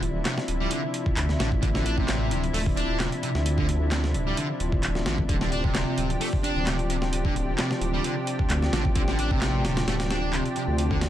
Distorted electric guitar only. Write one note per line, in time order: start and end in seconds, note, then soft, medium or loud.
0.25 0.35 C3 medium
0.60 0.70 G3 medium
0.71 0.81 D3 medium
1.39 1.49 D3 medium
1.62 1.68 D3 medium
1.74 1.83 D3 medium
1.85 1.96 D4 medium
1.97 2.42 C3 medium
2.54 2.60 A3 medium
2.77 2.99 D4 medium
2.99 3.09 C3 medium
3.23 3.28 C3 medium
3.58 3.66 D3 medium
3.92 4.01 C3 medium
4.27 4.37 G3 medium
4.38 4.47 D3 medium
5.06 5.16 D3 medium
5.29 5.35 D3 medium
5.41 5.49 D3 medium
5.52 5.63 D4 medium
5.64 6.09 C3 medium
6.21 6.26 A3 medium
6.44 6.65 D4 medium
6.67 6.76 C3 medium
6.90 6.95 C3 medium
7.25 7.33 D3 medium
7.59 7.68 C3 medium
7.94 8.03 G3 medium
8.04 8.14 D3 medium
8.73 8.82 D3 medium
8.96 9.02 D3 medium
9.08 9.16 D3 medium
9.19 9.30 D4 medium
9.31 9.76 C3 medium
9.88 9.93 A3 medium
10.11 10.32 D4 medium
10.33 10.43 C3 medium
10.56 10.62 C3 medium
10.91 10.99 D3 medium